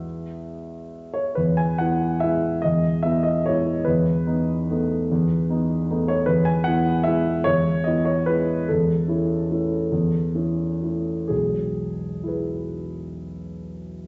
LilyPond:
<<
  \new Staff \with { instrumentName = "Grand piano" } { \time 3/4 \key e \major \tempo 4 = 142 << { e''2~ e''8 cis''8 | b'8 gis''8 fis''4 e''4 | dis''4 e''8 dis''8 cis''4 | b'2.~ |
b'2 r8 cis''8 | b'8 gis''8 fis''4 e''4 | cis''4 dis''8 cis''8 b'4 | a'2.~ |
a'2 r4 | gis'2.~ | gis'2. | } \\ { r2. | r2. | r2. | r2. |
r2. | r2. | r2. | r2. |
r2. | r2 <e' gis' b'>4~ | <e' gis' b'>2. | } >> }
  \new Staff \with { instrumentName = "Grand piano" } { \time 3/4 \key e \major <e, gis b e'>2. | e,4 <b e'>4 <gis b e'>4 | e,4 <b e'>4 <gis b e'>4 | e,4 <b dis'>4 <a b dis'>4 |
e,4 <b dis'>4 <a b dis'>4 | e,4 <b e'>4 <gis b e'>4 | e,4 <b e'>4 <gis b e'>4 | e,4 <cis' e'>4 <a cis' e'>4 |
e,4 <cis' e'>4 <a cis' e'>4 | <e,, b,,>2.~ | <e,, b,,>2. | }
>>